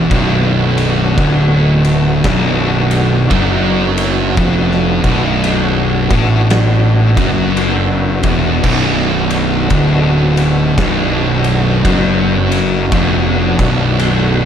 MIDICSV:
0, 0, Header, 1, 5, 480
1, 0, Start_track
1, 0, Key_signature, 2, "minor"
1, 0, Tempo, 1069519
1, 46, Time_signature, 4, 2, 24, 8
1, 6486, End_track
2, 0, Start_track
2, 0, Title_t, "Tonewheel organ"
2, 0, Program_c, 0, 16
2, 0, Note_on_c, 0, 59, 80
2, 0, Note_on_c, 0, 62, 66
2, 0, Note_on_c, 0, 66, 89
2, 6486, Note_off_c, 0, 59, 0
2, 6486, Note_off_c, 0, 62, 0
2, 6486, Note_off_c, 0, 66, 0
2, 6486, End_track
3, 0, Start_track
3, 0, Title_t, "Distorted electric guitar"
3, 0, Program_c, 1, 30
3, 48, Note_on_c, 1, 35, 99
3, 520, Note_off_c, 1, 35, 0
3, 526, Note_on_c, 1, 38, 104
3, 998, Note_off_c, 1, 38, 0
3, 1007, Note_on_c, 1, 35, 102
3, 1478, Note_off_c, 1, 35, 0
3, 1485, Note_on_c, 1, 42, 100
3, 1956, Note_off_c, 1, 42, 0
3, 1964, Note_on_c, 1, 41, 98
3, 2252, Note_off_c, 1, 41, 0
3, 2263, Note_on_c, 1, 35, 106
3, 2741, Note_off_c, 1, 35, 0
3, 2741, Note_on_c, 1, 45, 105
3, 3210, Note_off_c, 1, 45, 0
3, 3219, Note_on_c, 1, 42, 91
3, 3689, Note_off_c, 1, 42, 0
3, 3698, Note_on_c, 1, 40, 96
3, 3872, Note_off_c, 1, 40, 0
3, 3878, Note_on_c, 1, 35, 100
3, 4352, Note_off_c, 1, 35, 0
3, 4355, Note_on_c, 1, 38, 98
3, 4831, Note_off_c, 1, 38, 0
3, 4836, Note_on_c, 1, 35, 101
3, 5312, Note_off_c, 1, 35, 0
3, 5315, Note_on_c, 1, 42, 114
3, 5792, Note_off_c, 1, 42, 0
3, 5799, Note_on_c, 1, 41, 99
3, 6091, Note_off_c, 1, 41, 0
3, 6096, Note_on_c, 1, 35, 91
3, 6486, Note_off_c, 1, 35, 0
3, 6486, End_track
4, 0, Start_track
4, 0, Title_t, "Fingered electric bass"
4, 0, Program_c, 2, 33
4, 49, Note_on_c, 2, 23, 97
4, 508, Note_off_c, 2, 23, 0
4, 527, Note_on_c, 2, 26, 92
4, 986, Note_off_c, 2, 26, 0
4, 1007, Note_on_c, 2, 23, 103
4, 1465, Note_off_c, 2, 23, 0
4, 1484, Note_on_c, 2, 30, 95
4, 1943, Note_off_c, 2, 30, 0
4, 1964, Note_on_c, 2, 29, 88
4, 2243, Note_off_c, 2, 29, 0
4, 2262, Note_on_c, 2, 23, 101
4, 2721, Note_off_c, 2, 23, 0
4, 2741, Note_on_c, 2, 33, 93
4, 3201, Note_off_c, 2, 33, 0
4, 3220, Note_on_c, 2, 30, 86
4, 3680, Note_off_c, 2, 30, 0
4, 3698, Note_on_c, 2, 28, 103
4, 3865, Note_off_c, 2, 28, 0
4, 3878, Note_on_c, 2, 23, 96
4, 4339, Note_off_c, 2, 23, 0
4, 4358, Note_on_c, 2, 26, 91
4, 4820, Note_off_c, 2, 26, 0
4, 4838, Note_on_c, 2, 23, 92
4, 5301, Note_off_c, 2, 23, 0
4, 5317, Note_on_c, 2, 30, 93
4, 5781, Note_off_c, 2, 30, 0
4, 5800, Note_on_c, 2, 29, 101
4, 6082, Note_off_c, 2, 29, 0
4, 6100, Note_on_c, 2, 23, 104
4, 6486, Note_off_c, 2, 23, 0
4, 6486, End_track
5, 0, Start_track
5, 0, Title_t, "Drums"
5, 49, Note_on_c, 9, 36, 112
5, 49, Note_on_c, 9, 51, 97
5, 94, Note_off_c, 9, 36, 0
5, 94, Note_off_c, 9, 51, 0
5, 348, Note_on_c, 9, 51, 72
5, 393, Note_off_c, 9, 51, 0
5, 528, Note_on_c, 9, 36, 109
5, 528, Note_on_c, 9, 51, 106
5, 573, Note_off_c, 9, 36, 0
5, 573, Note_off_c, 9, 51, 0
5, 828, Note_on_c, 9, 51, 72
5, 873, Note_off_c, 9, 51, 0
5, 1006, Note_on_c, 9, 51, 109
5, 1007, Note_on_c, 9, 36, 127
5, 1010, Note_on_c, 9, 38, 126
5, 1051, Note_off_c, 9, 36, 0
5, 1051, Note_off_c, 9, 51, 0
5, 1055, Note_off_c, 9, 38, 0
5, 1305, Note_on_c, 9, 51, 80
5, 1350, Note_off_c, 9, 51, 0
5, 1484, Note_on_c, 9, 51, 103
5, 1485, Note_on_c, 9, 36, 103
5, 1529, Note_off_c, 9, 51, 0
5, 1530, Note_off_c, 9, 36, 0
5, 1785, Note_on_c, 9, 51, 84
5, 1829, Note_off_c, 9, 51, 0
5, 1962, Note_on_c, 9, 51, 105
5, 1963, Note_on_c, 9, 36, 108
5, 2007, Note_off_c, 9, 51, 0
5, 2008, Note_off_c, 9, 36, 0
5, 2116, Note_on_c, 9, 38, 36
5, 2160, Note_off_c, 9, 38, 0
5, 2261, Note_on_c, 9, 51, 75
5, 2262, Note_on_c, 9, 36, 92
5, 2306, Note_off_c, 9, 51, 0
5, 2307, Note_off_c, 9, 36, 0
5, 2440, Note_on_c, 9, 51, 102
5, 2485, Note_off_c, 9, 51, 0
5, 2740, Note_on_c, 9, 36, 105
5, 2740, Note_on_c, 9, 51, 71
5, 2785, Note_off_c, 9, 36, 0
5, 2785, Note_off_c, 9, 51, 0
5, 2919, Note_on_c, 9, 51, 114
5, 2923, Note_on_c, 9, 38, 127
5, 2964, Note_off_c, 9, 51, 0
5, 2968, Note_off_c, 9, 38, 0
5, 3218, Note_on_c, 9, 51, 76
5, 3219, Note_on_c, 9, 36, 110
5, 3263, Note_off_c, 9, 51, 0
5, 3264, Note_off_c, 9, 36, 0
5, 3396, Note_on_c, 9, 51, 98
5, 3441, Note_off_c, 9, 51, 0
5, 3695, Note_on_c, 9, 51, 77
5, 3697, Note_on_c, 9, 36, 112
5, 3740, Note_off_c, 9, 51, 0
5, 3742, Note_off_c, 9, 36, 0
5, 3875, Note_on_c, 9, 49, 112
5, 3877, Note_on_c, 9, 36, 103
5, 3920, Note_off_c, 9, 49, 0
5, 3922, Note_off_c, 9, 36, 0
5, 4176, Note_on_c, 9, 51, 74
5, 4221, Note_off_c, 9, 51, 0
5, 4354, Note_on_c, 9, 51, 98
5, 4356, Note_on_c, 9, 36, 103
5, 4399, Note_off_c, 9, 51, 0
5, 4401, Note_off_c, 9, 36, 0
5, 4655, Note_on_c, 9, 51, 73
5, 4700, Note_off_c, 9, 51, 0
5, 4837, Note_on_c, 9, 36, 112
5, 4837, Note_on_c, 9, 51, 117
5, 4841, Note_on_c, 9, 38, 121
5, 4882, Note_off_c, 9, 36, 0
5, 4882, Note_off_c, 9, 51, 0
5, 4886, Note_off_c, 9, 38, 0
5, 5135, Note_on_c, 9, 51, 78
5, 5180, Note_off_c, 9, 51, 0
5, 5318, Note_on_c, 9, 36, 108
5, 5318, Note_on_c, 9, 51, 104
5, 5362, Note_off_c, 9, 36, 0
5, 5363, Note_off_c, 9, 51, 0
5, 5618, Note_on_c, 9, 51, 79
5, 5663, Note_off_c, 9, 51, 0
5, 5798, Note_on_c, 9, 51, 108
5, 5799, Note_on_c, 9, 36, 121
5, 5843, Note_off_c, 9, 51, 0
5, 5844, Note_off_c, 9, 36, 0
5, 6099, Note_on_c, 9, 51, 78
5, 6100, Note_on_c, 9, 36, 92
5, 6143, Note_off_c, 9, 51, 0
5, 6145, Note_off_c, 9, 36, 0
5, 6281, Note_on_c, 9, 51, 108
5, 6325, Note_off_c, 9, 51, 0
5, 6486, End_track
0, 0, End_of_file